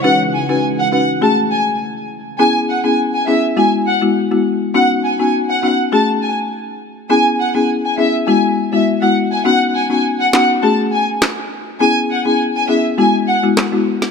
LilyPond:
<<
  \new Staff \with { instrumentName = "Violin section" } { \time 4/4 \key b \mixolydian \tempo 4 = 102 fis''16 r16 gis''16 gis''16 r16 fis''16 fis''16 r16 a''16 r16 gis''16 r4 r16 | gis''16 r16 fis''16 gis''16 r16 gis''16 e''16 r16 gis''16 r16 fis''16 r4 r16 | fis''16 r16 gis''16 gis''16 r16 fis''16 fis''16 r16 a''16 r16 gis''16 r4 r16 | gis''16 r16 fis''16 gis''16 r16 gis''16 e''16 r16 gis''16 r8 e''16 r16 fis''16 r16 gis''16 |
fis''16 r16 gis''16 gis''16 r16 fis''16 fis''16 r16 a''16 r16 gis''16 r4 r16 | gis''16 r16 fis''16 gis''16 r16 gis''16 e''16 r16 gis''16 r16 fis''16 r4 r16 | }
  \new Staff \with { instrumentName = "Marimba" } { \time 4/4 \key b \mixolydian <cis' dis' fis' b'>16 r8 <cis' dis' fis' b'>8. <cis' dis' fis' b'>8 <a cis' fis' gis'>4.~ <a cis' fis' gis'>16 r16 | <b cis' e' gis'>16 r8 <b cis' e' gis'>16 r8 <b cis' e' gis'>16 r16 <gis b e' fis'>8. <gis b e' fis'>16 r16 <gis b e' fis'>16 r8 | <b cis' dis' fis'>16 r8 <b cis' dis' fis'>8. <b cis' dis' fis'>8 <a cis' fis' gis'>4.~ <a cis' fis' gis'>16 r16 | <b cis' e' gis'>16 r8 <b cis' e' gis'>16 r8 <b cis' e' gis'>16 r16 <gis b e' fis'>8. <gis b e' fis'>16 r16 <gis b e' fis'>16 r8 |
<b cis' dis' fis'>16 r8 <b cis' dis' fis'>8. <b cis' dis' fis'>8 <a cis' fis' gis'>4.~ <a cis' fis' gis'>16 r16 | <b cis' e' gis'>16 r8 <b cis' e' gis'>16 r8 <b cis' e' gis'>16 r16 <gis b e' fis'>8. <gis b e' fis'>16 r16 <gis b e' fis'>16 r8 | }
  \new DrumStaff \with { instrumentName = "Drums" } \drummode { \time 4/4 r4 r4 r4 r4 | r4 r4 r4 r4 | r4 r4 r4 r4 | r4 r4 r4 r4 |
r4 r8 <hc sn>8 r4 <hc ss sn>4 | r4 r4 r4 <hc ss sn>8. sn16 | }
>>